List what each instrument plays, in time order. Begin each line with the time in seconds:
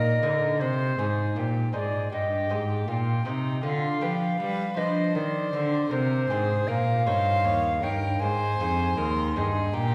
Already playing: lute A#2 A#3 D#4 A#4, cello A#2, violin A#4, flute D#5
0.23 cello D3, lute D3 A#3 D#4 A#4
0.60 lute C3, cello C3, flute C5, violin C5
0.99 lute G#2 D#4 C5, cello G#2, violin G#4
1.36 lute A#2, cello A#2, violin G4
1.73 lute G#2 D#4 C5, cello G#2, violin G#4, flute D5
2.12 lute G2, cello G2, violin G4, flute D#5
2.49 lute G#2 D#4 C5, cello G#2
2.88 lute A#2, cello A#2, violin F4, flute G5
3.25 lute C3 D#4 C5, cello C3, violin D#4
3.63 lute D3, cello D3, violin F4, flute F5
4.01 lute F3 D4 B4, cello F3, violin G4
4.39 cello G3, lute G3, violin B4
4.76 lute F3 D4 B4, cello F3, violin C5, flute D#5
5.14 cello D#3, lute D#3, flute D5
5.53 cello D3, lute D3 C4 C5
5.91 lute C3, cello C3, violin A#4, flute C5
6.30 cello G#2, lute G#2 C4 C5, violin G#4
6.68 lute A#2, cello A#2, violin A#4, flute F5
7.06 cello G2, lute G2 D#4 C#5, violin C5
7.44 lute D#2, cello D#2, violin C#5
7.82 lute G2 D#4 C#5, cello G2, violin A#4, flute G5
8.20 cello G#2, lute G#2, violin C5, flute G#5
8.59 cello F2, lute F2 G#3 D#4 C5
8.97 lute D#2, cello D#2, violin A#4, flute C6
9.36 lute G2 G#3 D#4 C5, cello G2, violin G#4
9.72 lute A#2, cello A#2, violin G4, flute A#5